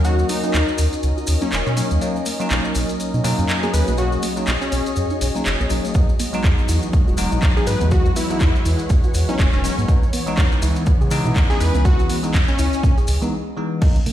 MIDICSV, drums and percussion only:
0, 0, Header, 1, 2, 480
1, 0, Start_track
1, 0, Tempo, 491803
1, 47, Time_signature, 4, 2, 24, 8
1, 13787, End_track
2, 0, Start_track
2, 0, Title_t, "Drums"
2, 43, Note_on_c, 9, 70, 57
2, 45, Note_on_c, 9, 42, 64
2, 141, Note_off_c, 9, 70, 0
2, 143, Note_off_c, 9, 42, 0
2, 183, Note_on_c, 9, 70, 30
2, 281, Note_off_c, 9, 70, 0
2, 284, Note_on_c, 9, 70, 95
2, 286, Note_on_c, 9, 46, 114
2, 382, Note_off_c, 9, 70, 0
2, 383, Note_off_c, 9, 46, 0
2, 425, Note_on_c, 9, 42, 54
2, 427, Note_on_c, 9, 70, 40
2, 522, Note_off_c, 9, 42, 0
2, 525, Note_off_c, 9, 70, 0
2, 526, Note_on_c, 9, 42, 67
2, 529, Note_on_c, 9, 39, 123
2, 533, Note_on_c, 9, 70, 58
2, 624, Note_off_c, 9, 42, 0
2, 627, Note_off_c, 9, 39, 0
2, 631, Note_off_c, 9, 70, 0
2, 665, Note_on_c, 9, 70, 26
2, 762, Note_off_c, 9, 70, 0
2, 762, Note_on_c, 9, 70, 96
2, 765, Note_on_c, 9, 46, 96
2, 859, Note_off_c, 9, 70, 0
2, 863, Note_off_c, 9, 46, 0
2, 905, Note_on_c, 9, 42, 53
2, 909, Note_on_c, 9, 70, 41
2, 1002, Note_off_c, 9, 42, 0
2, 1006, Note_off_c, 9, 70, 0
2, 1006, Note_on_c, 9, 42, 66
2, 1007, Note_on_c, 9, 70, 51
2, 1104, Note_off_c, 9, 42, 0
2, 1105, Note_off_c, 9, 70, 0
2, 1147, Note_on_c, 9, 70, 28
2, 1238, Note_off_c, 9, 70, 0
2, 1238, Note_on_c, 9, 70, 92
2, 1246, Note_on_c, 9, 46, 114
2, 1335, Note_off_c, 9, 70, 0
2, 1344, Note_off_c, 9, 46, 0
2, 1378, Note_on_c, 9, 70, 39
2, 1385, Note_on_c, 9, 42, 55
2, 1476, Note_off_c, 9, 70, 0
2, 1483, Note_off_c, 9, 42, 0
2, 1486, Note_on_c, 9, 42, 66
2, 1487, Note_on_c, 9, 70, 55
2, 1489, Note_on_c, 9, 39, 122
2, 1584, Note_off_c, 9, 42, 0
2, 1585, Note_off_c, 9, 70, 0
2, 1587, Note_off_c, 9, 39, 0
2, 1626, Note_on_c, 9, 70, 26
2, 1724, Note_off_c, 9, 70, 0
2, 1726, Note_on_c, 9, 46, 92
2, 1727, Note_on_c, 9, 70, 98
2, 1823, Note_off_c, 9, 46, 0
2, 1825, Note_off_c, 9, 70, 0
2, 1865, Note_on_c, 9, 42, 52
2, 1865, Note_on_c, 9, 70, 38
2, 1962, Note_off_c, 9, 70, 0
2, 1963, Note_off_c, 9, 42, 0
2, 1966, Note_on_c, 9, 42, 63
2, 1968, Note_on_c, 9, 70, 58
2, 2064, Note_off_c, 9, 42, 0
2, 2065, Note_off_c, 9, 70, 0
2, 2109, Note_on_c, 9, 70, 27
2, 2201, Note_off_c, 9, 70, 0
2, 2201, Note_on_c, 9, 70, 98
2, 2206, Note_on_c, 9, 46, 110
2, 2299, Note_off_c, 9, 70, 0
2, 2304, Note_off_c, 9, 46, 0
2, 2345, Note_on_c, 9, 42, 53
2, 2348, Note_on_c, 9, 70, 45
2, 2443, Note_off_c, 9, 42, 0
2, 2445, Note_off_c, 9, 70, 0
2, 2445, Note_on_c, 9, 70, 52
2, 2446, Note_on_c, 9, 42, 63
2, 2449, Note_on_c, 9, 39, 120
2, 2542, Note_off_c, 9, 70, 0
2, 2544, Note_off_c, 9, 42, 0
2, 2547, Note_off_c, 9, 39, 0
2, 2583, Note_on_c, 9, 70, 28
2, 2680, Note_off_c, 9, 70, 0
2, 2683, Note_on_c, 9, 70, 101
2, 2686, Note_on_c, 9, 46, 96
2, 2781, Note_off_c, 9, 70, 0
2, 2783, Note_off_c, 9, 46, 0
2, 2822, Note_on_c, 9, 70, 42
2, 2825, Note_on_c, 9, 42, 51
2, 2919, Note_off_c, 9, 70, 0
2, 2922, Note_off_c, 9, 42, 0
2, 2926, Note_on_c, 9, 42, 66
2, 2929, Note_on_c, 9, 70, 60
2, 3024, Note_off_c, 9, 42, 0
2, 3027, Note_off_c, 9, 70, 0
2, 3065, Note_on_c, 9, 70, 27
2, 3163, Note_off_c, 9, 70, 0
2, 3166, Note_on_c, 9, 46, 112
2, 3169, Note_on_c, 9, 70, 88
2, 3264, Note_off_c, 9, 46, 0
2, 3267, Note_off_c, 9, 70, 0
2, 3305, Note_on_c, 9, 42, 52
2, 3307, Note_on_c, 9, 70, 42
2, 3403, Note_off_c, 9, 42, 0
2, 3405, Note_off_c, 9, 70, 0
2, 3406, Note_on_c, 9, 42, 67
2, 3408, Note_on_c, 9, 70, 55
2, 3410, Note_on_c, 9, 39, 118
2, 3504, Note_off_c, 9, 42, 0
2, 3506, Note_off_c, 9, 70, 0
2, 3507, Note_off_c, 9, 39, 0
2, 3544, Note_on_c, 9, 70, 27
2, 3642, Note_off_c, 9, 70, 0
2, 3646, Note_on_c, 9, 46, 95
2, 3649, Note_on_c, 9, 70, 89
2, 3744, Note_off_c, 9, 46, 0
2, 3747, Note_off_c, 9, 70, 0
2, 3782, Note_on_c, 9, 70, 44
2, 3786, Note_on_c, 9, 42, 51
2, 3880, Note_off_c, 9, 70, 0
2, 3880, Note_on_c, 9, 70, 53
2, 3883, Note_off_c, 9, 42, 0
2, 3887, Note_on_c, 9, 42, 64
2, 3977, Note_off_c, 9, 70, 0
2, 3984, Note_off_c, 9, 42, 0
2, 4023, Note_on_c, 9, 70, 29
2, 4120, Note_off_c, 9, 70, 0
2, 4124, Note_on_c, 9, 70, 97
2, 4127, Note_on_c, 9, 46, 109
2, 4222, Note_off_c, 9, 70, 0
2, 4224, Note_off_c, 9, 46, 0
2, 4263, Note_on_c, 9, 70, 42
2, 4266, Note_on_c, 9, 42, 49
2, 4361, Note_off_c, 9, 70, 0
2, 4362, Note_on_c, 9, 70, 53
2, 4364, Note_off_c, 9, 42, 0
2, 4367, Note_on_c, 9, 42, 64
2, 4370, Note_on_c, 9, 39, 118
2, 4460, Note_off_c, 9, 70, 0
2, 4465, Note_off_c, 9, 42, 0
2, 4468, Note_off_c, 9, 39, 0
2, 4506, Note_on_c, 9, 70, 31
2, 4603, Note_off_c, 9, 70, 0
2, 4607, Note_on_c, 9, 46, 95
2, 4607, Note_on_c, 9, 70, 97
2, 4705, Note_off_c, 9, 46, 0
2, 4705, Note_off_c, 9, 70, 0
2, 4746, Note_on_c, 9, 42, 51
2, 4746, Note_on_c, 9, 70, 41
2, 4840, Note_off_c, 9, 70, 0
2, 4840, Note_on_c, 9, 70, 50
2, 4843, Note_off_c, 9, 42, 0
2, 4848, Note_on_c, 9, 42, 64
2, 4937, Note_off_c, 9, 70, 0
2, 4945, Note_off_c, 9, 42, 0
2, 4978, Note_on_c, 9, 70, 25
2, 5076, Note_off_c, 9, 70, 0
2, 5087, Note_on_c, 9, 46, 109
2, 5093, Note_on_c, 9, 70, 98
2, 5184, Note_off_c, 9, 46, 0
2, 5191, Note_off_c, 9, 70, 0
2, 5226, Note_on_c, 9, 42, 52
2, 5232, Note_on_c, 9, 70, 40
2, 5323, Note_off_c, 9, 42, 0
2, 5326, Note_off_c, 9, 70, 0
2, 5326, Note_on_c, 9, 70, 57
2, 5327, Note_on_c, 9, 42, 62
2, 5330, Note_on_c, 9, 39, 114
2, 5424, Note_off_c, 9, 70, 0
2, 5425, Note_off_c, 9, 42, 0
2, 5428, Note_off_c, 9, 39, 0
2, 5471, Note_on_c, 9, 70, 27
2, 5561, Note_off_c, 9, 70, 0
2, 5561, Note_on_c, 9, 70, 88
2, 5567, Note_on_c, 9, 46, 94
2, 5659, Note_off_c, 9, 70, 0
2, 5665, Note_off_c, 9, 46, 0
2, 5706, Note_on_c, 9, 42, 51
2, 5708, Note_on_c, 9, 70, 45
2, 5799, Note_off_c, 9, 70, 0
2, 5799, Note_on_c, 9, 70, 47
2, 5804, Note_off_c, 9, 42, 0
2, 5807, Note_on_c, 9, 36, 122
2, 5807, Note_on_c, 9, 42, 65
2, 5897, Note_off_c, 9, 70, 0
2, 5905, Note_off_c, 9, 36, 0
2, 5905, Note_off_c, 9, 42, 0
2, 5945, Note_on_c, 9, 70, 27
2, 6043, Note_off_c, 9, 70, 0
2, 6047, Note_on_c, 9, 46, 109
2, 6048, Note_on_c, 9, 70, 85
2, 6144, Note_off_c, 9, 46, 0
2, 6146, Note_off_c, 9, 70, 0
2, 6184, Note_on_c, 9, 70, 36
2, 6186, Note_on_c, 9, 42, 52
2, 6282, Note_off_c, 9, 70, 0
2, 6283, Note_off_c, 9, 42, 0
2, 6287, Note_on_c, 9, 36, 117
2, 6287, Note_on_c, 9, 42, 65
2, 6289, Note_on_c, 9, 70, 52
2, 6290, Note_on_c, 9, 39, 115
2, 6384, Note_off_c, 9, 36, 0
2, 6384, Note_off_c, 9, 42, 0
2, 6386, Note_off_c, 9, 70, 0
2, 6388, Note_off_c, 9, 39, 0
2, 6425, Note_on_c, 9, 70, 27
2, 6523, Note_off_c, 9, 70, 0
2, 6524, Note_on_c, 9, 70, 101
2, 6527, Note_on_c, 9, 46, 92
2, 6621, Note_off_c, 9, 70, 0
2, 6624, Note_off_c, 9, 46, 0
2, 6662, Note_on_c, 9, 70, 41
2, 6665, Note_on_c, 9, 42, 52
2, 6759, Note_off_c, 9, 70, 0
2, 6763, Note_off_c, 9, 42, 0
2, 6766, Note_on_c, 9, 70, 54
2, 6767, Note_on_c, 9, 36, 119
2, 6767, Note_on_c, 9, 42, 65
2, 6863, Note_off_c, 9, 70, 0
2, 6864, Note_off_c, 9, 36, 0
2, 6865, Note_off_c, 9, 42, 0
2, 6910, Note_on_c, 9, 70, 24
2, 7001, Note_off_c, 9, 70, 0
2, 7001, Note_on_c, 9, 70, 89
2, 7006, Note_on_c, 9, 46, 111
2, 7099, Note_off_c, 9, 70, 0
2, 7104, Note_off_c, 9, 46, 0
2, 7145, Note_on_c, 9, 42, 52
2, 7149, Note_on_c, 9, 70, 41
2, 7243, Note_off_c, 9, 42, 0
2, 7246, Note_off_c, 9, 70, 0
2, 7246, Note_on_c, 9, 42, 63
2, 7247, Note_on_c, 9, 36, 119
2, 7248, Note_on_c, 9, 70, 56
2, 7249, Note_on_c, 9, 39, 117
2, 7344, Note_off_c, 9, 36, 0
2, 7344, Note_off_c, 9, 42, 0
2, 7345, Note_off_c, 9, 70, 0
2, 7347, Note_off_c, 9, 39, 0
2, 7388, Note_on_c, 9, 70, 28
2, 7484, Note_off_c, 9, 70, 0
2, 7484, Note_on_c, 9, 70, 93
2, 7486, Note_on_c, 9, 46, 90
2, 7582, Note_off_c, 9, 70, 0
2, 7584, Note_off_c, 9, 46, 0
2, 7619, Note_on_c, 9, 70, 44
2, 7625, Note_on_c, 9, 42, 52
2, 7717, Note_off_c, 9, 70, 0
2, 7719, Note_on_c, 9, 70, 50
2, 7722, Note_off_c, 9, 42, 0
2, 7726, Note_on_c, 9, 42, 67
2, 7727, Note_on_c, 9, 36, 117
2, 7817, Note_off_c, 9, 70, 0
2, 7824, Note_off_c, 9, 36, 0
2, 7824, Note_off_c, 9, 42, 0
2, 7861, Note_on_c, 9, 70, 25
2, 7959, Note_off_c, 9, 70, 0
2, 7966, Note_on_c, 9, 46, 107
2, 7966, Note_on_c, 9, 70, 94
2, 8064, Note_off_c, 9, 46, 0
2, 8064, Note_off_c, 9, 70, 0
2, 8103, Note_on_c, 9, 70, 41
2, 8105, Note_on_c, 9, 42, 53
2, 8200, Note_off_c, 9, 70, 0
2, 8201, Note_on_c, 9, 70, 53
2, 8203, Note_off_c, 9, 42, 0
2, 8207, Note_on_c, 9, 36, 113
2, 8207, Note_on_c, 9, 42, 67
2, 8210, Note_on_c, 9, 39, 112
2, 8299, Note_off_c, 9, 70, 0
2, 8304, Note_off_c, 9, 36, 0
2, 8304, Note_off_c, 9, 42, 0
2, 8308, Note_off_c, 9, 39, 0
2, 8349, Note_on_c, 9, 70, 26
2, 8447, Note_off_c, 9, 70, 0
2, 8447, Note_on_c, 9, 46, 87
2, 8447, Note_on_c, 9, 70, 89
2, 8544, Note_off_c, 9, 46, 0
2, 8545, Note_off_c, 9, 70, 0
2, 8576, Note_on_c, 9, 70, 37
2, 8585, Note_on_c, 9, 42, 53
2, 8674, Note_off_c, 9, 70, 0
2, 8682, Note_on_c, 9, 70, 55
2, 8683, Note_off_c, 9, 42, 0
2, 8687, Note_on_c, 9, 36, 116
2, 8687, Note_on_c, 9, 42, 66
2, 8779, Note_off_c, 9, 70, 0
2, 8785, Note_off_c, 9, 36, 0
2, 8785, Note_off_c, 9, 42, 0
2, 8818, Note_on_c, 9, 70, 27
2, 8915, Note_off_c, 9, 70, 0
2, 8923, Note_on_c, 9, 70, 91
2, 8927, Note_on_c, 9, 46, 105
2, 9020, Note_off_c, 9, 70, 0
2, 9024, Note_off_c, 9, 46, 0
2, 9065, Note_on_c, 9, 42, 56
2, 9068, Note_on_c, 9, 70, 34
2, 9163, Note_off_c, 9, 42, 0
2, 9165, Note_off_c, 9, 70, 0
2, 9167, Note_on_c, 9, 36, 115
2, 9167, Note_on_c, 9, 42, 69
2, 9169, Note_on_c, 9, 70, 54
2, 9170, Note_on_c, 9, 39, 115
2, 9265, Note_off_c, 9, 36, 0
2, 9265, Note_off_c, 9, 42, 0
2, 9267, Note_off_c, 9, 70, 0
2, 9268, Note_off_c, 9, 39, 0
2, 9297, Note_on_c, 9, 70, 25
2, 9395, Note_off_c, 9, 70, 0
2, 9408, Note_on_c, 9, 46, 87
2, 9415, Note_on_c, 9, 70, 97
2, 9505, Note_off_c, 9, 46, 0
2, 9513, Note_off_c, 9, 70, 0
2, 9546, Note_on_c, 9, 42, 53
2, 9552, Note_on_c, 9, 70, 40
2, 9644, Note_off_c, 9, 42, 0
2, 9647, Note_off_c, 9, 70, 0
2, 9647, Note_on_c, 9, 36, 113
2, 9647, Note_on_c, 9, 42, 68
2, 9647, Note_on_c, 9, 70, 46
2, 9745, Note_off_c, 9, 36, 0
2, 9745, Note_off_c, 9, 42, 0
2, 9745, Note_off_c, 9, 70, 0
2, 9790, Note_on_c, 9, 70, 24
2, 9887, Note_on_c, 9, 46, 108
2, 9888, Note_off_c, 9, 70, 0
2, 9897, Note_on_c, 9, 70, 85
2, 9985, Note_off_c, 9, 46, 0
2, 9995, Note_off_c, 9, 70, 0
2, 10024, Note_on_c, 9, 70, 40
2, 10025, Note_on_c, 9, 42, 56
2, 10122, Note_off_c, 9, 70, 0
2, 10123, Note_off_c, 9, 42, 0
2, 10126, Note_on_c, 9, 42, 67
2, 10127, Note_on_c, 9, 36, 110
2, 10129, Note_on_c, 9, 39, 115
2, 10134, Note_on_c, 9, 70, 55
2, 10224, Note_off_c, 9, 36, 0
2, 10224, Note_off_c, 9, 42, 0
2, 10227, Note_off_c, 9, 39, 0
2, 10231, Note_off_c, 9, 70, 0
2, 10266, Note_on_c, 9, 70, 25
2, 10363, Note_off_c, 9, 70, 0
2, 10366, Note_on_c, 9, 46, 88
2, 10366, Note_on_c, 9, 70, 90
2, 10464, Note_off_c, 9, 46, 0
2, 10464, Note_off_c, 9, 70, 0
2, 10500, Note_on_c, 9, 70, 37
2, 10506, Note_on_c, 9, 42, 57
2, 10598, Note_off_c, 9, 70, 0
2, 10600, Note_on_c, 9, 70, 47
2, 10603, Note_off_c, 9, 42, 0
2, 10606, Note_on_c, 9, 42, 73
2, 10607, Note_on_c, 9, 36, 121
2, 10697, Note_off_c, 9, 70, 0
2, 10704, Note_off_c, 9, 36, 0
2, 10704, Note_off_c, 9, 42, 0
2, 10749, Note_on_c, 9, 70, 24
2, 10840, Note_off_c, 9, 70, 0
2, 10840, Note_on_c, 9, 70, 85
2, 10846, Note_on_c, 9, 46, 104
2, 10938, Note_off_c, 9, 70, 0
2, 10944, Note_off_c, 9, 46, 0
2, 10985, Note_on_c, 9, 42, 57
2, 10989, Note_on_c, 9, 70, 39
2, 11083, Note_off_c, 9, 42, 0
2, 11086, Note_off_c, 9, 70, 0
2, 11086, Note_on_c, 9, 36, 113
2, 11086, Note_on_c, 9, 42, 66
2, 11089, Note_on_c, 9, 39, 116
2, 11090, Note_on_c, 9, 70, 51
2, 11184, Note_off_c, 9, 36, 0
2, 11184, Note_off_c, 9, 42, 0
2, 11187, Note_off_c, 9, 39, 0
2, 11188, Note_off_c, 9, 70, 0
2, 11228, Note_on_c, 9, 70, 27
2, 11326, Note_off_c, 9, 70, 0
2, 11326, Note_on_c, 9, 46, 87
2, 11328, Note_on_c, 9, 70, 86
2, 11424, Note_off_c, 9, 46, 0
2, 11425, Note_off_c, 9, 70, 0
2, 11465, Note_on_c, 9, 42, 56
2, 11467, Note_on_c, 9, 70, 42
2, 11562, Note_off_c, 9, 42, 0
2, 11564, Note_off_c, 9, 70, 0
2, 11564, Note_on_c, 9, 70, 46
2, 11566, Note_on_c, 9, 36, 114
2, 11566, Note_on_c, 9, 42, 72
2, 11662, Note_off_c, 9, 70, 0
2, 11664, Note_off_c, 9, 36, 0
2, 11664, Note_off_c, 9, 42, 0
2, 11704, Note_on_c, 9, 42, 39
2, 11706, Note_on_c, 9, 70, 28
2, 11802, Note_off_c, 9, 42, 0
2, 11804, Note_off_c, 9, 70, 0
2, 11805, Note_on_c, 9, 46, 106
2, 11810, Note_on_c, 9, 70, 85
2, 11903, Note_off_c, 9, 46, 0
2, 11908, Note_off_c, 9, 70, 0
2, 11941, Note_on_c, 9, 70, 38
2, 11944, Note_on_c, 9, 42, 57
2, 12038, Note_off_c, 9, 70, 0
2, 12042, Note_off_c, 9, 42, 0
2, 12045, Note_on_c, 9, 42, 70
2, 12045, Note_on_c, 9, 70, 53
2, 12046, Note_on_c, 9, 36, 116
2, 12049, Note_on_c, 9, 39, 125
2, 12143, Note_off_c, 9, 42, 0
2, 12143, Note_off_c, 9, 70, 0
2, 12144, Note_off_c, 9, 36, 0
2, 12146, Note_off_c, 9, 39, 0
2, 12181, Note_on_c, 9, 70, 25
2, 12185, Note_on_c, 9, 42, 39
2, 12279, Note_off_c, 9, 70, 0
2, 12282, Note_off_c, 9, 42, 0
2, 12284, Note_on_c, 9, 70, 97
2, 12286, Note_on_c, 9, 46, 93
2, 12381, Note_off_c, 9, 70, 0
2, 12383, Note_off_c, 9, 46, 0
2, 12425, Note_on_c, 9, 42, 57
2, 12431, Note_on_c, 9, 70, 40
2, 12523, Note_off_c, 9, 42, 0
2, 12526, Note_on_c, 9, 36, 121
2, 12526, Note_on_c, 9, 42, 71
2, 12528, Note_off_c, 9, 70, 0
2, 12531, Note_on_c, 9, 70, 56
2, 12623, Note_off_c, 9, 36, 0
2, 12623, Note_off_c, 9, 42, 0
2, 12628, Note_off_c, 9, 70, 0
2, 12665, Note_on_c, 9, 42, 38
2, 12669, Note_on_c, 9, 70, 26
2, 12759, Note_off_c, 9, 70, 0
2, 12759, Note_on_c, 9, 70, 87
2, 12763, Note_off_c, 9, 42, 0
2, 12766, Note_on_c, 9, 46, 104
2, 12857, Note_off_c, 9, 70, 0
2, 12864, Note_off_c, 9, 46, 0
2, 12905, Note_on_c, 9, 42, 59
2, 12906, Note_on_c, 9, 70, 35
2, 13003, Note_off_c, 9, 42, 0
2, 13004, Note_off_c, 9, 70, 0
2, 13486, Note_on_c, 9, 36, 123
2, 13486, Note_on_c, 9, 42, 85
2, 13486, Note_on_c, 9, 49, 104
2, 13583, Note_off_c, 9, 42, 0
2, 13583, Note_off_c, 9, 49, 0
2, 13584, Note_off_c, 9, 36, 0
2, 13624, Note_on_c, 9, 42, 56
2, 13625, Note_on_c, 9, 63, 88
2, 13722, Note_off_c, 9, 42, 0
2, 13722, Note_on_c, 9, 64, 84
2, 13723, Note_off_c, 9, 63, 0
2, 13725, Note_on_c, 9, 46, 110
2, 13787, Note_off_c, 9, 46, 0
2, 13787, Note_off_c, 9, 64, 0
2, 13787, End_track
0, 0, End_of_file